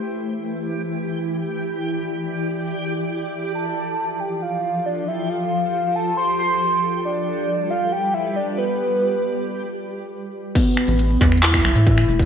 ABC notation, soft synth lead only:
X:1
M:4/4
L:1/8
Q:1/4=137
K:Am
V:1 name="Soft synth lead"
z8 | z8 | a3 g f2 d e | f3 a c' c'2 z |
d3 f g e d B- | B6 z2 | B,4 E4 |]